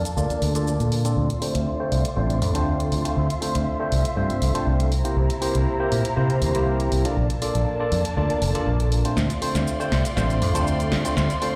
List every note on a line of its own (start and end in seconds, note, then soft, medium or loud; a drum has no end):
0.00 1.15 A#3 medium
0.00 1.15 D4 medium
0.00 1.15 A5 medium
0.05 closed hi-hat medium
0.05 shaker medium
0.17 0.28 D2 medium
0.17 0.52 A#3 medium
0.17 0.52 D4 medium
0.17 0.52 F4 medium
0.17 0.52 A4 medium
0.17 0.52 D5 medium
0.17 shaker soft
0.30 muted fingered electric bass stroke soft
0.30 closed hi-hat soft
0.30 shaker soft
0.42 0.76 D2 medium
0.42 open hi-hat loud
0.55 1.02 A#3 medium
0.55 1.02 D4 medium
0.55 1.02 F4 medium
0.55 1.02 A4 medium
0.55 1.02 D5 loud
0.55 closed hi-hat medium
0.55 shaker medium
0.67 shaker medium
0.80 1.14 A#2 medium
0.80 closed hi-hat soft
0.80 shaker soft
0.92 open hi-hat loud
1.05 1.27 C4 medium
1.05 1.27 D4 medium
1.05 1.28 F4 medium
1.05 1.28 A4 medium
1.05 1.28 D5 medium
1.05 closed hi-hat medium
1.05 shaker medium
1.17 1.28 D2 medium
1.17 4.88 F4 medium
1.17 3.15 D5 medium
1.17 4.88 C6 medium
1.30 closed hi-hat medium
1.41 1.77 A3 medium
1.41 1.77 C4 medium
1.41 1.77 D4 medium
1.41 1.77 F4 medium
1.41 1.77 C5 medium
1.41 open hi-hat loud
1.55 1.65 D2 medium
1.55 closed hi-hat medium
1.79 2.02 A3 medium
1.79 2.02 C4 medium
1.79 2.03 D4 medium
1.79 2.03 F4 medium
1.79 2.03 C5 medium
1.92 2.03 C2 medium
1.92 open hi-hat loud
2.05 closed hi-hat medium
2.16 2.42 A1 loud
2.16 2.52 A3 medium
2.16 2.52 C4 medium
2.16 2.52 D4 medium
2.16 2.52 F4 medium
2.16 2.52 C5 medium
2.30 closed hi-hat soft
2.42 2.55 F2 loud
2.42 open hi-hat loud
2.54 2.89 D2 medium
2.54 3.02 A3 medium
2.54 3.02 C4 medium
2.54 3.02 D4 medium
2.54 3.02 F4 medium
2.54 3.02 C5 loud
2.54 closed hi-hat medium
2.80 closed hi-hat medium
2.92 3.03 D2 medium
2.92 open hi-hat loud
3.04 3.27 A3 medium
3.04 3.27 C4 medium
3.04 3.27 D4 medium
3.04 3.28 F4 medium
3.04 3.28 C5 medium
3.04 closed hi-hat medium
3.17 3.28 D2 loud
3.17 4.90 E5 medium
3.30 closed hi-hat medium
3.41 3.77 A3 medium
3.41 3.77 C4 medium
3.41 3.77 D4 medium
3.41 3.77 F4 medium
3.41 3.77 C5 medium
3.41 open hi-hat loud
3.55 3.65 D2 medium
3.55 closed hi-hat medium
3.79 4.02 A3 medium
3.79 4.02 C4 medium
3.79 4.03 D4 medium
3.79 4.03 F4 medium
3.79 4.03 C5 medium
3.92 4.03 C2 medium
3.92 open hi-hat loud
4.05 closed hi-hat medium
4.16 4.28 G2 medium
4.16 4.52 A3 medium
4.16 4.52 C4 medium
4.16 4.52 D4 medium
4.16 4.52 F4 medium
4.16 4.52 C5 loud
4.30 muted fingered electric bass stroke soft
4.30 closed hi-hat soft
4.42 4.53 C2 loud
4.42 open hi-hat loud
4.54 4.90 A3 medium
4.54 4.90 C4 medium
4.54 4.90 D4 medium
4.54 4.90 F4 medium
4.54 4.91 C5 loud
4.54 closed hi-hat medium
4.67 5.02 C2 medium
4.80 closed hi-hat medium
4.92 7.15 E4 medium
4.92 7.15 C5 medium
4.92 7.15 A#5 medium
4.92 open hi-hat loud
5.04 5.27 A#3 medium
5.04 5.27 C4 medium
5.04 5.27 E4 medium
5.04 5.27 G4 medium
5.04 5.28 C5 medium
5.04 closed hi-hat medium
5.17 5.28 C2 loud
5.30 closed hi-hat medium
5.41 5.77 A#3 medium
5.41 5.77 C4 medium
5.41 5.77 E4 medium
5.41 5.77 G4 medium
5.41 5.77 C5 loud
5.41 open hi-hat loud
5.55 5.65 C2 medium
5.55 closed hi-hat medium
5.79 6.02 A#3 medium
5.79 6.02 C4 medium
5.79 6.02 E4 medium
5.79 6.03 G4 medium
5.79 6.03 C5 medium
5.92 6.03 A#2 medium
5.92 open hi-hat loud
6.05 closed hi-hat medium
6.16 6.43 C3 loud
6.16 6.52 A#3 medium
6.16 6.52 C4 medium
6.16 6.52 E4 medium
6.16 6.52 G4 medium
6.16 6.52 C5 loud
6.30 closed hi-hat soft
6.42 6.55 E2 loud
6.42 open hi-hat loud
6.54 6.89 C2 medium
6.54 7.02 A#3 medium
6.54 7.02 C4 medium
6.54 7.02 E4 medium
6.54 7.02 G4 medium
6.54 7.02 C5 loud
6.54 closed hi-hat medium
6.80 closed hi-hat soft
6.92 7.03 C2 medium
6.92 open hi-hat loud
7.04 7.27 A#3 medium
7.04 7.27 D4 medium
7.04 7.27 F4 medium
7.04 7.28 A4 medium
7.04 7.28 D5 medium
7.04 closed hi-hat medium
7.17 7.28 A#1 loud
7.17 9.15 A#3 medium
7.17 9.15 D4 medium
7.17 9.15 A5 medium
7.30 closed hi-hat medium
7.42 7.77 A#3 medium
7.42 7.77 D4 medium
7.42 7.77 F4 medium
7.42 7.77 A4 medium
7.42 7.77 D5 medium
7.42 open hi-hat loud
7.55 7.65 A#1 medium
7.55 closed hi-hat medium
7.80 8.02 A#3 medium
7.80 8.02 D4 medium
7.80 8.03 F4 medium
7.80 8.03 A4 medium
7.80 8.03 D5 medium
7.92 8.03 F2 medium
7.92 open hi-hat loud
8.05 closed hi-hat medium
8.16 8.28 D2 loud
8.16 8.52 A#3 medium
8.16 8.52 D4 medium
8.16 8.52 F4 medium
8.16 8.52 A4 medium
8.16 8.52 D5 loud
8.30 muted fingered electric bass stroke soft
8.30 closed hi-hat soft
8.42 8.53 F1 loud
8.42 open hi-hat loud
8.54 9.02 A#3 medium
8.54 9.02 D4 medium
8.54 9.02 F4 medium
8.54 9.02 A4 medium
8.54 9.02 D5 loud
8.54 closed hi-hat medium
8.67 9.02 A#1 medium
8.80 closed hi-hat soft
8.92 open hi-hat loud
9.04 9.27 A3 medium
9.04 9.27 C4 medium
9.04 9.28 D4 medium
9.04 9.28 F4 medium
9.04 9.28 C5 medium
9.04 closed hi-hat medium
9.17 9.28 D2 loud
9.17 11.56 F4 medium
9.17 11.56 D5 medium
9.17 11.56 C6 medium
9.17 snare soft
9.17 shaker medium
9.30 closed hi-hat medium
9.30 shaker soft
9.41 9.77 A3 medium
9.41 9.77 C4 medium
9.41 9.77 D4 medium
9.41 9.77 F4 medium
9.41 9.77 C5 loud
9.41 open hi-hat loud
9.55 9.65 D2 medium
9.55 snare soft
9.55 closed hi-hat medium
9.55 shaker medium
9.67 shaker medium
9.79 10.02 A3 medium
9.79 10.02 C4 medium
9.79 10.02 D4 medium
9.79 10.03 F4 medium
9.79 10.03 C5 loud
9.79 shaker soft
9.92 10.03 C2 medium
9.92 snare medium
9.92 open hi-hat loud
10.05 closed hi-hat medium
10.05 shaker medium
10.16 10.42 A1 loud
10.16 10.52 A3 medium
10.16 10.52 C4 medium
10.16 10.52 D4 medium
10.16 10.52 F4 medium
10.16 10.52 C5 loud
10.16 snare soft
10.16 shaker medium
10.30 closed hi-hat soft
10.30 shaker soft
10.42 10.55 F2 loud
10.42 open hi-hat loud
10.54 10.89 D2 medium
10.54 11.02 A3 medium
10.54 11.02 C4 medium
10.54 11.02 D4 medium
10.54 11.02 F4 medium
10.54 11.02 C5 loud
10.54 closed hi-hat medium
10.54 shaker medium
10.67 shaker medium
10.80 closed hi-hat soft
10.80 shaker soft
10.92 11.03 D2 medium
10.92 snare medium
10.92 open hi-hat loud
11.04 11.27 A3 medium
11.04 11.27 C4 medium
11.04 11.27 D4 medium
11.04 11.28 F4 medium
11.04 11.28 C5 medium
11.04 closed hi-hat medium
11.04 shaker medium
11.17 11.28 D2 loud
11.17 snare medium
11.17 shaker medium
11.30 closed hi-hat medium
11.30 shaker soft
11.41 11.56 A3 medium
11.41 11.56 C4 medium
11.41 11.56 D4 medium
11.41 11.56 F4 medium
11.41 11.56 C5 loud
11.41 open hi-hat loud